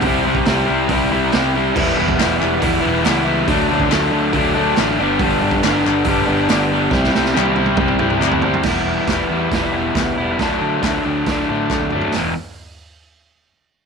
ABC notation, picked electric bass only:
X:1
M:4/4
L:1/8
Q:1/4=139
K:Em
V:1 name="Picked electric bass" clef=bass
C,, C,, C,, C,, C,, C,, C,,2 | E,,, E,,, E,,, E,,, E,,, E,,, ^C,,2 | D,, D,, D,, D,, D,, D,, A,,, G,,, | G,,, G,,, G,,, G,,, G,,, G,,, G,,,2 |
C,, C,, C,, C,, C,, C,, D,,2 | E,,,2 E,,, E,, E,,, E,,, D,, E,,, | D,, D, D,, D,, D,, A,, D,,2 | E,,, z6 z |]